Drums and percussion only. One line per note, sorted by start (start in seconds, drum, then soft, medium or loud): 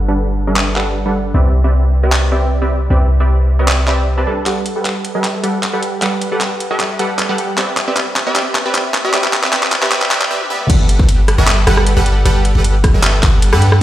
0.56 clap loud
0.76 clap medium
2.12 clap loud
3.68 clap loud
3.88 clap medium
4.46 clap soft
4.46 closed hi-hat medium
4.66 closed hi-hat medium
4.85 clap medium
4.85 closed hi-hat medium
5.05 closed hi-hat medium
5.24 clap medium
5.24 closed hi-hat medium
5.44 closed hi-hat medium
5.63 clap medium
5.63 closed hi-hat medium
5.83 closed hi-hat medium
6.02 clap medium
6.02 closed hi-hat medium
6.21 closed hi-hat medium
6.41 clap medium
6.41 closed hi-hat medium
6.60 closed hi-hat medium
6.80 clap medium
6.80 closed hi-hat medium
6.99 closed hi-hat medium
7.19 clap medium
7.19 closed hi-hat medium
7.38 closed hi-hat medium
7.58 clap medium
7.58 closed hi-hat medium
7.77 clap medium
7.77 closed hi-hat medium
7.97 clap medium
7.97 closed hi-hat medium
8.16 clap medium
8.16 closed hi-hat medium
8.36 clap medium
8.36 closed hi-hat medium
8.55 clap medium
8.55 closed hi-hat medium
8.75 clap medium
8.75 closed hi-hat medium
8.94 clap medium
8.94 closed hi-hat medium
9.14 clap medium
9.14 closed hi-hat medium
9.24 clap medium
9.33 clap loud
9.33 closed hi-hat medium
9.44 clap medium
9.53 clap loud
9.53 closed hi-hat medium
9.63 clap medium
9.72 clap loud
9.72 closed hi-hat medium
9.83 clap medium
9.92 clap loud
9.92 closed hi-hat medium
10.02 clap medium
10.11 clap loud
10.11 closed hi-hat medium
10.22 clap medium
10.41 high tom medium
10.50 mid tom medium
10.60 mid tom medium
10.70 kick loud
10.70 closed hi-hat medium
10.70 crash loud
10.89 closed hi-hat medium
10.99 kick loud
11.09 closed hi-hat medium
11.28 cross-stick medium
11.28 closed hi-hat medium
11.48 clap loud
11.48 closed hi-hat medium
11.67 cross-stick medium
11.67 closed hi-hat medium
11.77 cross-stick medium
11.87 closed hi-hat medium
12.06 closed hi-hat medium
12.26 closed hi-hat medium
12.45 closed hi-hat medium
12.64 closed hi-hat medium
12.84 kick loud
12.84 cross-stick medium
12.84 closed hi-hat medium
13.03 clap loud
13.03 closed hi-hat medium
13.23 kick loud
13.23 clap medium
13.23 closed hi-hat medium
13.42 closed hi-hat medium
13.53 cross-stick medium
13.62 closed hi-hat medium
13.72 cross-stick medium